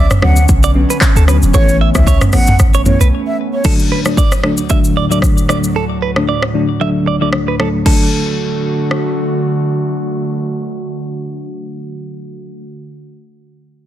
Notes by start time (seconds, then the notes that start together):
Already playing: D3 B3 C#4 D5
0.11 cross-stick, mid tom, shaker
0.22 D2 D3 F#3 B3 C#4 F#5, cross-stick
0.36 shaker
0.49 B1, kick, shaker
0.63 D5, shaker
0.75 D3 F#3 B3 C#4
0.90 B4, shaker
1.01 kick, cross-stick, clap, shaker
1.16 D2 A4, shaker
1.28 D3 F#3 B3 C#4 B4, cross-stick, shaker
1.42 E1, shaker
1.54 A1 E3 A3 B3 C#4 C#5, kick, shaker
1.69 shaker
1.81 E5
1.95 C#2 E3 A3 B3 C#4 E5, kick, cross-stick, shaker
2.07 C#5, kick, shaker
2.21 cross-stick, mid tom, shaker
2.33 A1 E3 A3 B3 C#4 F#5, cross-stick, open hi-hat, shaker
2.47 mid tom, shaker
2.59 A1, kick, cross-stick, shaker
2.74 C#5, shaker
2.85 E3 A3 B3 C#4 C#5, mid tom, shaker
3.00 B1 B4, shaker
3.27 E5
3.53 C#5
3.65 D2 A2 D3 F#3 A3 D4 A4, kick, crash, shaker
3.79 shaker
3.92 B4
4.05 D3 F#3 A3 D4, cross-stick, shaker
4.17 D5, kick, shaker
4.32 cross-stick, shaker
4.43 D3 F#3 A3 D4, cross-stick
4.57 shaker
4.70 D3 F#3 A3 D4 E5, kick, shaker
4.84 shaker
4.97 D5
5.11 D3 F#3 A3 D4 D5, shaker
5.22 kick, cross-stick, shaker
5.38 shaker
5.49 D3 F#3 A3 D4 D5, cross-stick, shaker
5.64 shaker
5.76 A4
6.02 B4
6.16 D3 F#3 A3 D4, cross-stick
6.29 D5
6.42 cross-stick
6.54 D3 F#3 A3 D4
6.80 D3 F#3 A3 D4 E5
7.07 D5
7.21 D3 F#3 A3 D4 D5
7.33 cross-stick
7.48 B4
7.59 D3 F#3 A3 D4 A4, cross-stick
7.85 D3 F#3 A3 D4 F#4 A4, kick, crash
8.91 cross-stick